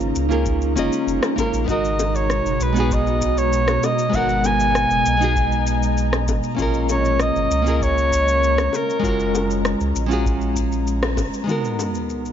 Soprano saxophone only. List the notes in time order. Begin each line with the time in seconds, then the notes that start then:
1.70 D#5
2.16 C#5
2.62 B4
2.93 D#5
3.38 C#5
3.85 D#5
4.15 F#5
4.46 G#5
6.91 C#5
7.22 D#5
7.75 D#5
7.83 C#5
8.75 A#4